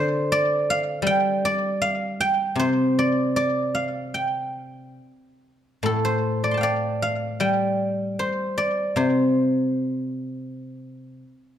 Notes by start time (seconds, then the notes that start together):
Already playing: D3 C5 D5
0.32 D5
0.70 F5
1.02 G3
1.07 G5
1.45 D5
1.82 F5
2.21 G5
2.55 C3 C5
2.99 D5
3.36 D5
3.75 F5
4.14 G5
5.83 A2 A4
6.05 C5
6.44 D5
6.51 A5 C6
6.57 F5 G5
6.63 D5
7.02 F5
7.40 G3 G5
8.19 C5
8.58 D5
8.96 C3 C5